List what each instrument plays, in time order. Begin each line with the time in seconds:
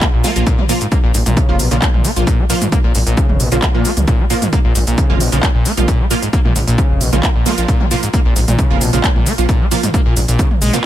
0.01 acid bass A#3, kick, clap, closed hi-hat, shaker
0.13 detuned saw bass A#1, acid bass A#2
0.24 synth stab F3 A#3 F4, acid bass A#3, open hi-hat, shaker
0.36 detuned saw bass A#1, synth stab F3 A#3 F4, closed hi-hat, shaker
0.47 acid bass A#2, kick, closed hi-hat, shaker
0.58 acid bass G#3, mid tom
0.69 acid bass A#2, synth stab F3 A#3 F4, open hi-hat, shaker
0.81 acid bass G#2, closed hi-hat, shaker
0.92 acid bass A#3, kick, closed hi-hat, shaker
1.03 detuned saw bass A#1, acid bass A#2
1.14 detuned saw bass A#1, acid bass G#2, open hi-hat, shaker
1.26 detuned saw bass A#1, acid bass A#2, closed hi-hat, mid tom, shaker
1.37 acid bass C#3, kick, closed hi-hat, shaker
1.49 detuned saw bass F1, synth stab F3 A#3 F4
1.59 detuned saw bass A#1, acid bass B2, open hi-hat, shaker
1.71 detuned saw bass A#1, acid bass C#3, synth stab F3 A#3 F4, closed hi-hat, shaker
1.82 acid bass A#3, kick, clap, closed hi-hat, shaker
1.94 detuned saw bass A#1, acid bass A#2, mid tom
2.04 acid bass A#3, open hi-hat, shaker
2.16 detuned saw bass A#1, synth stab F3 A#3 F4, closed hi-hat, shaker
2.27 acid bass A#2, kick, closed hi-hat, shaker
2.39 acid bass G#3
2.50 acid bass A#2, synth stab F3 A#3 F4, open hi-hat, shaker
2.61 acid bass G#2, closed hi-hat, mid tom, shaker
2.72 acid bass A#3, kick, closed hi-hat, shaker
2.84 detuned saw bass A#1, acid bass A#2
2.95 detuned saw bass A#1, acid bass G#2, open hi-hat, shaker
3.07 detuned saw bass A#1, acid bass A#2, closed hi-hat, shaker
3.17 acid bass C#3, kick, closed hi-hat, shaker
3.29 detuned saw bass F1, mid tom
3.40 detuned saw bass A#1, acid bass B2, open hi-hat, shaker
3.52 detuned saw bass A#1, acid bass C#3, synth stab F3 A#3 F4, closed hi-hat, shaker
3.62 acid bass A#3, kick, clap, closed hi-hat, shaker
3.74 detuned saw bass A#2, acid bass A#2, synth stab F3 A#3 F4
3.85 acid bass A#3, open hi-hat, shaker
3.97 detuned saw bass C#2, closed hi-hat, mid tom, shaker
4.08 acid bass A#2, kick, closed hi-hat, shaker
4.19 acid bass G#3
4.30 acid bass A#2, synth stab F3 A#3 F4, open hi-hat, shaker
4.42 acid bass G#2, closed hi-hat, mid tom, shaker
4.53 acid bass A#3, kick, closed hi-hat, shaker
4.65 detuned saw bass A#1, acid bass A#2
4.75 detuned saw bass A#1, acid bass G#2, open hi-hat, shaker
4.87 detuned saw bass A#1, acid bass A#2, closed hi-hat, shaker
4.98 acid bass C#3, kick, closed hi-hat, shaker
5.10 detuned saw bass F1, synth stab F3 A#3 F4, mid tom
5.20 detuned saw bass A#1, acid bass B2, open hi-hat, shaker
5.32 detuned saw bass A#1, acid bass C#3, synth stab F3 A#3 F4, closed hi-hat, shaker
5.43 acid bass A#3, kick, clap, closed hi-hat, shaker
5.55 detuned saw bass A#1, acid bass A#2
5.65 acid bass A#3, open hi-hat, shaker
5.77 detuned saw bass A#1, synth stab F3 A#3 F4, closed hi-hat, mid tom, shaker
5.88 acid bass A#2, kick, closed hi-hat, shaker
6.00 acid bass G#3
6.11 acid bass A#2, synth stab F3 A#3 F4, open hi-hat, shaker
6.22 acid bass G#2, closed hi-hat, shaker
6.33 acid bass A#3, kick, closed hi-hat, shaker
6.45 detuned saw bass A#1, acid bass A#2, mid tom
6.56 detuned saw bass A#1, acid bass G#2, open hi-hat, shaker
6.68 detuned saw bass A#1, acid bass A#2, closed hi-hat, shaker
6.78 acid bass C#3, kick, closed hi-hat, shaker
6.90 detuned saw bass F1
7.01 detuned saw bass A#1, acid bass B2, open hi-hat, shaker
7.13 detuned saw bass A#1, acid bass C#3, synth stab F3 A#3 F4, closed hi-hat, mid tom, shaker
7.23 acid bass A#3, kick, clap, closed hi-hat, shaker
7.35 detuned saw bass A#1, acid bass A#2
7.46 synth stab F3 A#3 F4, acid bass A#3, open hi-hat, shaker
7.58 detuned saw bass A#1, synth stab F3 A#3 F4, closed hi-hat, shaker
7.68 acid bass A#2, kick, closed hi-hat, shaker
7.80 acid bass G#3, mid tom
7.91 acid bass A#2, synth stab F3 A#3 F4, open hi-hat, shaker
8.03 acid bass G#2, closed hi-hat, shaker
8.14 acid bass A#3, kick, closed hi-hat, shaker
8.25 detuned saw bass A#1, acid bass A#2
8.36 detuned saw bass A#1, acid bass G#2, open hi-hat, shaker
8.48 detuned saw bass A#1, acid bass A#2, closed hi-hat, mid tom, shaker
8.59 acid bass C#3, kick, closed hi-hat, shaker
8.70 detuned saw bass F1, synth stab F3 A#3 F4
8.81 detuned saw bass A#1, acid bass B2, open hi-hat, shaker
8.93 detuned saw bass A#1, acid bass C#3, synth stab F3 A#3 F4, closed hi-hat, shaker
9.04 acid bass A#3, kick, clap, closed hi-hat, shaker
9.15 detuned saw bass A#1, acid bass A#2, mid tom
9.26 acid bass A#3, open hi-hat, shaker
9.38 detuned saw bass A#1, synth stab F3 A#3 F4, closed hi-hat, shaker
9.49 acid bass A#2, kick, closed hi-hat, shaker
9.61 acid bass G#3
9.71 acid bass A#2, synth stab F3 A#3 F4, open hi-hat, shaker
9.83 acid bass G#2, closed hi-hat, mid tom, shaker
9.94 acid bass A#3, kick, closed hi-hat, shaker
10.06 detuned saw bass A#1, acid bass A#2
10.16 detuned saw bass A#1, acid bass G#2, open hi-hat, shaker
10.28 detuned saw bass A#1, acid bass A#2, closed hi-hat, shaker
10.39 acid bass C#3, kick, closed hi-hat, shaker
10.51 mid tom
10.62 detuned saw bass A#1, acid bass G#3, open hi-hat, shaker
10.73 acid bass A#2, synth stab F3 A#3 F4, closed hi-hat, shaker